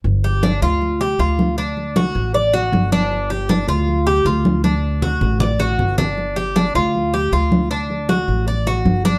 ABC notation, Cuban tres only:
X:1
M:4/4
L:1/8
Q:1/4=157
K:Dphr
V:1 name="Cuban tres"
z G D F2 G F2 | D2 ^F2 d F2 D- | D G D F2 G F2 | D2 ^F2 d F2 D- |
D G D F2 G F2 | D2 ^F2 d F2 D |]